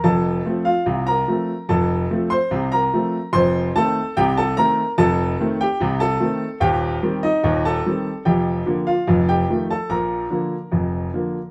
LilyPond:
<<
  \new Staff \with { instrumentName = "Grand piano" } { \time 2/4 \key f \major \tempo 4 = 73 <a' a''>8. <f' f''>8 <bes' bes''>8. | <a' a''>8. <c'' c'''>8 <bes' bes''>8. | <c'' c'''>8 <a' a''>8 <g' g''>16 <a' a''>16 <bes' bes''>8 | <a' a''>8. <g' g''>8 <a' a''>8. |
\key bes \major <g' g''>8. <ees' ees''>8 <a' a''>8. | <g' g''>8. <f' f''>8 <g' g''>8 <a' a''>16 | <bes' bes''>2 | }
  \new Staff \with { instrumentName = "Grand piano" } { \clef bass \time 2/4 \key f \major <f,, f,>8 <f a c'>8 <c, c>8 <f a c'>8 | <f,, f,>8 <f a c'>8 <c, c>8 <f a c'>8 | <f,, f,>8 <ees a c'>8 <c, c>8 <ees a c'>8 | <f,, f,>8 <ees a c'>8 <c, c>8 <ees a c'>8 |
\key bes \major <ees,, ees,>8 <ees g c'>8 <ees,, ees,>8 <ees g c'>8 | <f,, f,>8 <d f bes>8 <f,, f,>8 <ees f a>8 | <bes,, bes,>8 <d f bes>8 <f,, f,>8 <d f bes>8 | }
>>